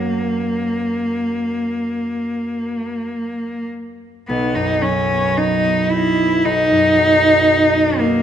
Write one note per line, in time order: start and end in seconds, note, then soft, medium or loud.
0.00 3.09 F#2 soft
0.00 3.10 F#3 soft
0.00 3.11 A#3 soft
0.00 3.68 A#3 soft
0.00 3.10 C#4 soft
0.00 3.12 F#4 soft
0.00 3.15 A#4 soft
0.00 3.11 C#5 medium
4.28 6.44 B1 soft
4.28 4.56 B3 medium
4.55 6.70 F#2 soft
4.55 4.83 D#4 medium
4.82 6.96 F#3 soft
4.82 5.38 C#4 medium
5.10 5.63 B3 soft
5.37 5.92 D#4 medium
5.37 5.90 D#4 soft
5.64 6.17 B3 soft
5.91 7.47 D#4 soft
5.91 6.46 E4 medium
6.18 7.22 B3 soft
6.45 8.22 B1 soft
6.45 8.00 D#4 medium
6.71 8.22 F#2 soft
6.98 8.22 F#3 soft
7.23 7.73 B3 soft
7.49 7.99 D#4 soft
7.74 8.22 B3 soft
7.99 8.22 A#3 medium
7.99 8.22 D#4 soft